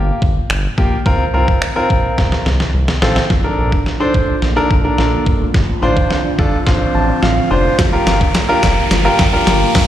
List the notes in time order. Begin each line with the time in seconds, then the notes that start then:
Already playing: G1 A#3 F4 G4
0.22 G1, kick
0.50 G1, finger snap
0.78 A#1 A#3 F4 G4, kick
1.06 C2 C4 F4 A#4, kick
1.34 C2 C4 F4 A#4
1.48 kick
1.62 finger snap
1.76 C4 F4 A#4
1.90 A#1, kick
2.18 C2, kick, snare
2.32 snare
2.46 C2, snare
2.60 snare
2.74 C2
2.88 snare
3.02 A1 C4 F4 A4, snare
3.16 snare
3.30 A#1 D3 F3 A#3 F4, kick, snare, riser
3.44 D4 A4 A#4
3.58 A#1
3.72 D4, kick
3.86 snare
4.00 D4 A4 C5
4.14 A1, kick
4.42 A#1 F3, snare
4.56 D4 A4 A#4
4.71 A#1, kick
4.84 D4 A4 A#4
4.98 A#1 F4, snare
5.26 G1 A#3, kick
5.40 A3
5.54 A1 F3 C4, kick, snare
5.82 A1 D4 F4 C5
5.96 D4, kick
6.10 snare
6.25 D4
6.38 G1 D4 F4 A4, kick
6.66 A1 F3 D4 F4 C5, kick, snare
6.95 A1 A5
7.09 D4
7.23 A1 F4 F5, snare
7.50 F1 C4 D4 F4 C5
7.65 A3
7.79 G1 F3 G3 A#3 F4, kick, snare, closed hi-hat
7.92 F4 G4 A#4
8.07 G1, snare, closed hi-hat
8.21 D4, kick
8.35 snare, closed hi-hat
8.49 D4 F4 G4 A#4
8.63 F1, kick, snare, closed hi-hat
8.91 G1 F3, snare, closed hi-hat
9.05 F4 G4 A#4
9.19 G1, kick, snare, closed hi-hat
9.33 D4 F4 G4 A#4
9.47 G1 F4, snare, closed hi-hat
9.75 G1 A#3, kick, snare, open hi-hat